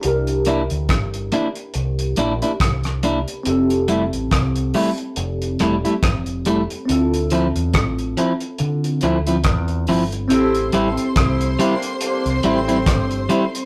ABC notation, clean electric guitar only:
X:1
M:4/4
L:1/16
Q:"Swing 16ths" 1/4=70
K:Aphr
V:1 name="Clean electric guitar"
z2 [B,DE] z3 [B,DE] z3 [B,DE] [B,DE] z2 [B,DE] z | z2 [G,A,E] z3 [G,A,E] z3 [G,A,E] [G,A,E] z2 [G,A,E] z | z2 [F,CE] z3 [F,CE] z3 [F,CE] [F,CE] z2 [F,CE] z | z2 [G,CE] z3 [G,CE] z3 [G,CE] [G,CE] z2 [G,CE] z |]